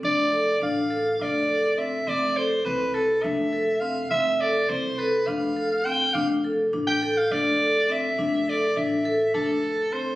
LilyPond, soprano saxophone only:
\new Staff \with { instrumentName = "Soprano saxophone" } { \time 7/8 \key f \lydian \tempo 4 = 103 d''4 f''4 d''4 e''8 | d''8 c''8 b'8 a'8 e''4 f''8 | e''8 d''8 c''8 b'8 f''4 g''8 | f''16 r4 g''8 f''16 d''4 e''8~ |
e''8 d''8 e''4 a'4 c''8 | }